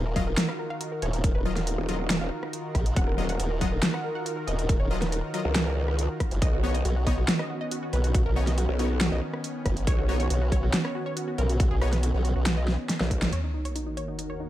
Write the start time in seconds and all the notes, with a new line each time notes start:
Already playing: D#1 D#3 D#4 F4 F#4 A#4
0.05 A#4
0.16 F#3 F4 D#5 F5, kick, closed hi-hat
0.27 A#4
0.37 A#4, snare, closed hi-hat
0.49 F5, cross-stick
0.59 A#4
0.70 F5
0.81 A#4, closed hi-hat
0.92 A#4
1.02 D#1 C#5, closed hi-hat
1.13 A#4, closed hi-hat
1.24 A#4, kick, closed hi-hat
1.35 D#1 B4
1.45 F#3 F4 A#4 D#5
1.56 F5, snare, closed hi-hat
1.67 A#4, closed hi-hat
1.78 D#1
1.89 F#3 F4 A#4 D#5, closed hi-hat
2.00 A#4
2.10 A#4, snare, closed hi-hat
2.21 D#1 F5
2.43 cross-stick
2.53 closed hi-hat
2.75 A#1, kick, cross-stick, closed hi-hat
2.86 closed hi-hat
2.96 D#1 F#5, kick, closed hi-hat
3.08 A#4
3.18 F#3 F4 A#4 D#5
3.29 F#5, closed hi-hat
3.40 D#1 A#4, closed hi-hat
3.51 A#4
3.61 F#3 F4 D#5 F#5, kick, closed hi-hat
3.72 A#4
3.83 A#4, snare, closed hi-hat
3.94 F#5, cross-stick
4.04 A#4
4.15 F#5
4.26 A#4, closed hi-hat
4.37 A#4
4.47 D#1 D#5, closed hi-hat
4.58 A#4, closed hi-hat
4.69 A#4, kick, closed hi-hat
4.80 D#1 C#5
4.90 F#3 F4 A#4 D#5
5.01 B4, snare, closed hi-hat
5.12 A#4, closed hi-hat
5.34 F#3 F4 A#4 D#5, closed hi-hat
5.45 C#2 A#4
5.55 A#4, snare, closed hi-hat
5.66 A#4
5.88 cross-stick
5.99 closed hi-hat
6.20 kick, cross-stick, closed hi-hat
6.31 F#1, closed hi-hat
6.42 B1 B3 C#4 D#5, kick, closed hi-hat
6.53 F#4
6.63 B3 D#4 F#4 C#5
6.74 D#5, closed hi-hat
6.85 B1 F#4, closed hi-hat
6.96 F#4
7.07 B3 D#4 C#5 D#5, kick, closed hi-hat
7.18 F#4
7.28 F#4, snare, closed hi-hat
7.39 D#5, cross-stick
7.50 F#4
7.61 D#5
7.71 F#4, closed hi-hat
7.83 F#4
7.93 B1 B4, closed hi-hat
8.04 F#4, closed hi-hat
8.14 F#4, kick, closed hi-hat
8.26 B1 A#4
8.36 B3 D#4 F#4 C#5
8.47 D#5, snare, closed hi-hat
8.58 F#4, closed hi-hat
8.69 B1
8.79 B3 D#4 F#4 C#5, closed hi-hat
8.91 F#4
9.01 F#4, snare, closed hi-hat
9.12 B1 D#5
9.33 cross-stick
9.44 closed hi-hat
9.66 F#1, kick, cross-stick, closed hi-hat
9.77 closed hi-hat
9.87 B1 C#5, kick, closed hi-hat
9.98 F#4
10.09 B3 D#4 F#4 C#5
10.20 C#5, closed hi-hat
10.30 B1 F#4, closed hi-hat
10.41 F#4
10.52 C#5, kick, closed hi-hat
10.63 F#4
10.74 F#4, snare, closed hi-hat
10.85 C#5, cross-stick
10.95 F#4
11.06 C#5
11.17 F#4, closed hi-hat
11.28 F#4
11.38 B1 A#4, closed hi-hat
11.49 F#4, closed hi-hat
11.60 F#4, kick, closed hi-hat
11.71 B1 G#4
11.81 B3 D#4 F#4 C#5, cross-stick
11.93 B4, snare, closed hi-hat
12.03 F#4, closed hi-hat
12.14 B1
12.25 F#4, closed hi-hat
12.36 B1 F#4
12.46 F#4, snare, closed hi-hat
12.57 D#5
12.68 snare
12.89 snare, closed hi-hat
13.00 B1, snare
13.11 kick, closed hi-hat
13.22 snare, closed hi-hat
13.32 D#2 D#3 A#3 F#4 A#4 C#5, closed hi-hat, sub drop
13.44 D#4
13.54 D#4
13.65 C#5, closed hi-hat
13.76 D#4, closed hi-hat
13.87 D#4
13.97 C#5, closed hi-hat
14.08 D#4
14.19 D#4, closed hi-hat
14.30 C#5
14.40 D#4